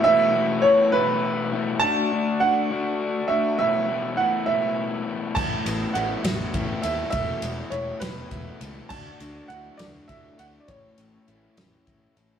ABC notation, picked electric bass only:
X:1
M:6/8
L:1/8
Q:3/8=68
K:A
V:1 name="Picked electric bass" clef=bass
z6 | z6 | z6 | A,,, A,,, A,,, A,,, A,,, ^D,, |
E,,, E,,, E,,, E,,, E,,, C,, | D,, D,, D,, D,, D,, D,, | A,,, A,,, A,,, A,,, A,,, A,,, |]